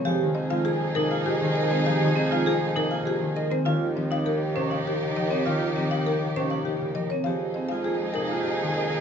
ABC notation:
X:1
M:3/4
L:1/16
Q:1/4=100
K:Fm
V:1 name="Marimba"
f z e f A z B f G z e c | f z e f A z B f G z e c | f z e f B z c f G z e d | f z e f B z c f G z e d |
f z e f A z B f G z e c |]
V:2 name="Soprano saxophone"
A12- | A8- A3 z | G12- | G8- G3 z |
A12 |]
V:3 name="String section"
[EA]12- | [EA]8- [EA]3 z | [EG]12- | [EG]8- [EG]3 z |
[EA]12 |]
V:4 name="Vibraphone"
G z C F A z E F A z B C | G z C F A z E F A z B C | F z C E G z D E G z B C | F z C E G z D E G z B C |
G z C F A z E F A z B z |]
V:5 name="Harp" clef=bass
[F,A,] E,2 A, B, A, C, B, C, E,2 A, | F, E,2 A, B, A, C, B, C, E,2 A, | E,2 F,2 B,2 C, B, C, D, F,2 | E,2 F,2 B,2 C, B, C, D, F,2 |
F,3 A, B, A, C, B, C, E,3 |]
V:6 name="Bassoon" clef=bass
F,,12- | F,,12 | E,,12- | E,,12 |
F,,12 |]